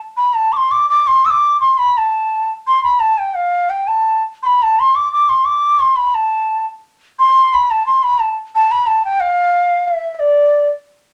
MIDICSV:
0, 0, Header, 1, 2, 480
1, 0, Start_track
1, 0, Tempo, 356718
1, 1192, Time_signature, 3, 2, 24, 8
1, 3584, Tempo, 348432
1, 7904, Tempo, 340136
1, 11744, Tempo, 332410
1, 15516, End_track
2, 0, Start_track
2, 0, Title_t, "Bansuri"
2, 0, Program_c, 0, 73
2, 228, Note_on_c, 0, 83, 82
2, 463, Note_on_c, 0, 81, 85
2, 483, Note_off_c, 0, 83, 0
2, 707, Note_on_c, 0, 86, 87
2, 727, Note_off_c, 0, 81, 0
2, 763, Note_on_c, 0, 84, 95
2, 776, Note_off_c, 0, 86, 0
2, 960, Note_on_c, 0, 86, 102
2, 981, Note_off_c, 0, 84, 0
2, 1197, Note_off_c, 0, 86, 0
2, 1205, Note_on_c, 0, 86, 106
2, 1442, Note_on_c, 0, 84, 95
2, 1462, Note_off_c, 0, 86, 0
2, 1688, Note_on_c, 0, 88, 88
2, 1708, Note_off_c, 0, 84, 0
2, 1754, Note_on_c, 0, 86, 95
2, 1767, Note_off_c, 0, 88, 0
2, 2152, Note_off_c, 0, 86, 0
2, 2160, Note_on_c, 0, 84, 92
2, 2399, Note_on_c, 0, 83, 95
2, 2419, Note_off_c, 0, 84, 0
2, 2658, Note_on_c, 0, 81, 78
2, 2678, Note_off_c, 0, 83, 0
2, 3359, Note_off_c, 0, 81, 0
2, 3594, Note_on_c, 0, 84, 96
2, 3815, Note_off_c, 0, 84, 0
2, 3820, Note_on_c, 0, 83, 87
2, 4048, Note_on_c, 0, 81, 89
2, 4068, Note_off_c, 0, 83, 0
2, 4299, Note_on_c, 0, 79, 82
2, 4320, Note_off_c, 0, 81, 0
2, 4526, Note_on_c, 0, 77, 77
2, 4547, Note_off_c, 0, 79, 0
2, 5009, Note_on_c, 0, 79, 77
2, 5030, Note_off_c, 0, 77, 0
2, 5253, Note_on_c, 0, 81, 79
2, 5274, Note_off_c, 0, 79, 0
2, 5745, Note_off_c, 0, 81, 0
2, 6014, Note_on_c, 0, 84, 77
2, 6061, Note_on_c, 0, 83, 84
2, 6075, Note_off_c, 0, 84, 0
2, 6286, Note_on_c, 0, 81, 84
2, 6306, Note_off_c, 0, 83, 0
2, 6521, Note_on_c, 0, 84, 94
2, 6542, Note_off_c, 0, 81, 0
2, 6738, Note_on_c, 0, 86, 95
2, 6759, Note_off_c, 0, 84, 0
2, 6965, Note_off_c, 0, 86, 0
2, 6973, Note_on_c, 0, 86, 97
2, 7203, Note_on_c, 0, 84, 89
2, 7224, Note_off_c, 0, 86, 0
2, 7423, Note_on_c, 0, 86, 91
2, 7444, Note_off_c, 0, 84, 0
2, 7900, Note_on_c, 0, 84, 84
2, 7921, Note_off_c, 0, 86, 0
2, 8136, Note_on_c, 0, 83, 81
2, 8157, Note_off_c, 0, 84, 0
2, 8394, Note_on_c, 0, 81, 81
2, 8415, Note_off_c, 0, 83, 0
2, 9116, Note_off_c, 0, 81, 0
2, 9868, Note_on_c, 0, 84, 109
2, 10356, Note_on_c, 0, 83, 94
2, 10377, Note_off_c, 0, 84, 0
2, 10596, Note_on_c, 0, 81, 83
2, 10618, Note_off_c, 0, 83, 0
2, 10809, Note_off_c, 0, 81, 0
2, 10818, Note_on_c, 0, 84, 83
2, 11057, Note_on_c, 0, 83, 91
2, 11078, Note_off_c, 0, 84, 0
2, 11285, Note_on_c, 0, 81, 77
2, 11306, Note_off_c, 0, 83, 0
2, 11514, Note_off_c, 0, 81, 0
2, 11789, Note_on_c, 0, 81, 96
2, 12023, Note_on_c, 0, 83, 92
2, 12044, Note_off_c, 0, 81, 0
2, 12244, Note_on_c, 0, 81, 88
2, 12265, Note_off_c, 0, 83, 0
2, 12478, Note_off_c, 0, 81, 0
2, 12508, Note_on_c, 0, 79, 90
2, 12729, Note_on_c, 0, 77, 98
2, 12751, Note_off_c, 0, 79, 0
2, 13702, Note_on_c, 0, 76, 79
2, 13723, Note_off_c, 0, 77, 0
2, 14093, Note_off_c, 0, 76, 0
2, 14093, Note_on_c, 0, 76, 54
2, 14162, Note_on_c, 0, 74, 79
2, 14183, Note_off_c, 0, 76, 0
2, 14874, Note_off_c, 0, 74, 0
2, 15516, End_track
0, 0, End_of_file